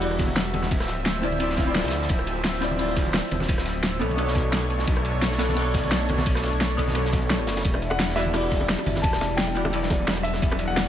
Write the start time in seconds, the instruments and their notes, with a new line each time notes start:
Already playing: detuned saw bass E1, analog synth pad G3 F#4 E5
0.00 hollow-body jazz guitar G3 E4 F#4, closed hi-hat, open hi-hat
0.04 hollow-body jazz guitar D5
0.11 cross-stick
0.19 kick, snare, closed hi-hat, ride
0.28 ride, high conga
0.36 snare, closed hi-hat, ride
0.54 closed hi-hat, ride, high conga
0.62 snare, high conga
0.71 detuned saw bass D1, analog synth pad F3 C4, kick, closed hi-hat, ride
0.80 cross-stick, snare
0.87 snare, closed hi-hat, ride
0.98 detuned saw bass D1
1.06 snare, closed hi-hat, ride
1.22 hollow-body jazz guitar C4 E4 F4 D5, closed hi-hat, ride
1.32 ride, high conga
1.39 hollow-body jazz guitar C4 E4 F4 D5, closed hi-hat, ride
1.49 snare
1.56 hollow-body jazz guitar C4 E4 F4 F5, kick, snare, closed hi-hat, ride, high conga
1.65 hollow-body jazz guitar C4 E4 F4, closed hi-hat
1.69 hollow-body jazz guitar D5
1.75 snare, closed hi-hat, ride
1.79 snare, ride
1.84 detuned saw bass C2, cross-stick, snare, ride
1.88 snare, ride
1.92 detuned saw bass D2, closed hi-hat, ride
2.01 snare
2.09 detuned saw bass D1, kick, closed hi-hat, ride
2.19 cross-stick
2.27 closed hi-hat, ride
2.44 snare, closed hi-hat, ride
2.54 snare
2.61 hollow-body jazz guitar C4 E4 F4 D5, snare, closed hi-hat, ride
2.71 high conga
2.76 hollow-body jazz guitar C4 E4 F4, closed hi-hat, open hi-hat
2.81 hollow-body jazz guitar D5
2.88 cross-stick
2.96 kick, snare, closed hi-hat, ride
3.06 ride, high conga
3.14 snare, closed hi-hat, ride
3.31 detuned saw bass E1, closed hi-hat, ride, high conga
3.40 snare, high conga
3.49 detuned saw bass D1, kick, closed hi-hat, ride
3.58 cross-stick, snare
3.65 snare, closed hi-hat, ride
3.75 detuned saw bass D1
3.83 snare, closed hi-hat, ride
3.99 detuned saw bass B1, analog synth pad A3 D4 C#5, hollow-body jazz guitar B3 D4 A4 C#5, closed hi-hat, ride
4.10 ride, high conga
4.16 hollow-body jazz guitar B3 D4 A4, closed hi-hat, ride
4.21 hollow-body jazz guitar C#5
4.27 snare
4.35 kick, snare, closed hi-hat, ride, high conga
4.52 snare, closed hi-hat, ride
4.62 cross-stick, ride
4.70 closed hi-hat, ride
4.79 snare
4.87 detuned saw bass B1, kick, closed hi-hat, ride
4.97 cross-stick
5.05 closed hi-hat, ride
5.14 detuned saw bass B1
5.22 snare, closed hi-hat, ride
5.31 snare
5.38 hollow-body jazz guitar B3 D4 A4 C#5, snare, closed hi-hat, ride
5.49 snare, high conga
5.54 hollow-body jazz guitar B3 D4 A4, closed hi-hat, open hi-hat
5.59 hollow-body jazz guitar C#5
5.74 kick, snare, closed hi-hat, ride
5.83 ride, high conga
5.91 snare, closed hi-hat, ride
6.09 closed hi-hat, ride, high conga
6.18 snare, high conga
6.26 detuned saw bass B1, kick, closed hi-hat, ride
6.35 cross-stick, snare
6.43 snare, closed hi-hat, ride
6.53 detuned saw bass B1, closed hi-hat
6.61 snare, closed hi-hat, ride
6.77 hollow-body jazz guitar B3 D4 A4 C#5, kick, closed hi-hat, ride
6.87 snare, high conga
6.93 hollow-body jazz guitar B3 D4 A4, closed hi-hat, ride
6.98 hollow-body jazz guitar C#5
7.05 snare
7.13 kick, snare, closed hi-hat, ride, high conga
7.22 closed hi-hat
7.30 snare, closed hi-hat, ride
7.39 detuned saw bass A1, cross-stick
7.47 detuned saw bass F#1, snare, closed hi-hat, ride
7.57 snare, ride
7.65 detuned saw bass E1, analog synth pad E3 D4 E4, kick, closed hi-hat, ride
7.74 cross-stick, high bongo
7.82 closed hi-hat, ride
7.90 grand piano F#5, high bongo
7.99 snare, closed hi-hat, ride
8.09 snare
8.16 hollow-body jazz guitar G3 E4 F#4 D5, grand piano E5, snare, closed hi-hat, ride, high bongo
8.26 high conga
8.32 hollow-body jazz guitar G3 E4 F#4, closed hi-hat, open hi-hat, high bongo
8.37 hollow-body jazz guitar D5
8.44 cross-stick
8.51 kick, snare, closed hi-hat, ride
8.61 ride, high bongo, high conga
8.68 snare, closed hi-hat, ride
8.78 high bongo
8.86 detuned saw bass F#1, open hi-hat, ride, high conga
8.95 snare, high conga
9.02 detuned saw bass E1, grand piano A5, kick, closed hi-hat, ride, high bongo
9.13 cross-stick, snare
9.21 snare, closed hi-hat, ride, high bongo
9.30 detuned saw bass E1
9.37 grand piano G5, snare, closed hi-hat, ride
9.47 high bongo
9.54 hollow-body jazz guitar G3 E4 F#4 D5, closed hi-hat, ride
9.65 ride, high bongo, high conga
9.70 hollow-body jazz guitar F#3 G3 E4, closed hi-hat, ride
9.75 hollow-body jazz guitar D5
9.83 snare
9.90 kick, snare, closed hi-hat, ride, high bongo, high conga
10.07 snare, closed hi-hat, ride, high bongo
10.17 cross-stick, ride
10.23 grand piano E5, open hi-hat, ride
10.33 snare, high bongo
10.42 detuned saw bass E1, kick, closed hi-hat, ride
10.52 cross-stick, high bongo
10.59 closed hi-hat, ride
10.68 detuned saw bass E1, grand piano F#5
10.76 snare, closed hi-hat, ride, high bongo